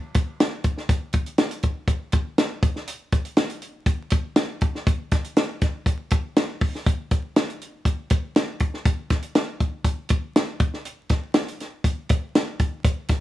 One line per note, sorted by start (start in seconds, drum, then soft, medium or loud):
0.14 kick loud
0.14 closed hi-hat medium
0.40 snare loud
0.40 closed hi-hat medium
0.64 kick medium
0.64 closed hi-hat medium
0.78 snare soft
0.89 kick loud
0.89 closed hi-hat medium
1.13 kick medium
1.13 closed hi-hat medium
1.26 closed hi-hat soft
1.38 snare loud
1.38 closed hi-hat medium
1.51 closed hi-hat medium
1.63 kick medium
1.63 closed hi-hat medium
1.88 kick medium
1.88 closed hi-hat medium
2.12 kick loud
2.12 closed hi-hat medium
2.38 snare loud
2.38 closed hi-hat medium
2.63 kick loud
2.63 closed hi-hat medium
2.76 snare soft
2.87 closed hi-hat medium
3.12 kick medium
3.12 closed hi-hat medium
3.25 closed hi-hat soft
3.37 snare loud
3.37 closed hi-hat medium
3.50 closed hi-hat medium
3.62 closed hi-hat medium
3.86 kick loud
3.86 closed hi-hat medium
4.10 kick loud
4.10 closed hi-hat medium
4.36 snare loud
4.36 closed hi-hat medium
4.61 kick loud
4.61 closed hi-hat medium
4.75 snare soft
4.86 kick loud
4.86 closed hi-hat medium
5.11 kick loud
5.11 snare soft
5.11 closed hi-hat medium
5.24 closed hi-hat soft
5.36 snare loud
5.36 closed hi-hat medium
5.61 kick medium
5.61 snare soft
5.61 closed hi-hat medium
5.86 kick medium
5.86 closed hi-hat medium
6.10 kick loud
6.10 closed hi-hat medium
6.36 snare loud
6.36 closed hi-hat medium
6.61 kick medium
6.61 open hi-hat soft
6.75 snare soft
6.86 kick loud
6.86 closed hi-hat medium
7.11 kick medium
7.11 closed hi-hat medium
7.36 snare loud
7.36 closed hi-hat medium
7.50 closed hi-hat medium
7.62 closed hi-hat medium
7.85 kick medium
7.85 closed hi-hat medium
8.10 kick loud
8.10 closed hi-hat medium
8.36 snare loud
8.36 closed hi-hat medium
8.60 kick medium
8.60 closed hi-hat medium
8.74 snare soft
8.85 kick loud
8.85 closed hi-hat medium
9.10 kick medium
9.10 snare soft
9.10 closed hi-hat medium
9.22 closed hi-hat soft
9.35 snare loud
9.35 closed hi-hat medium
9.60 kick medium
9.60 closed hi-hat medium
9.84 kick medium
9.84 closed hi-hat medium
10.09 kick loud
10.09 closed hi-hat medium
10.36 snare loud
10.36 closed hi-hat medium
10.60 kick loud
10.60 closed hi-hat medium
10.74 snare soft
10.85 closed hi-hat medium
11.09 kick medium
11.09 snare soft
11.09 closed hi-hat medium
11.34 snare loud
11.34 closed hi-hat medium
11.48 closed hi-hat medium
11.60 snare soft
11.60 closed hi-hat medium
11.84 kick medium
11.84 closed hi-hat medium
12.09 kick loud
12.09 closed hi-hat medium
12.35 snare loud
12.35 closed hi-hat medium
12.59 kick loud
12.59 closed hi-hat medium
12.84 kick loud
12.84 closed hi-hat medium
13.08 kick medium
13.08 snare soft
13.08 closed hi-hat medium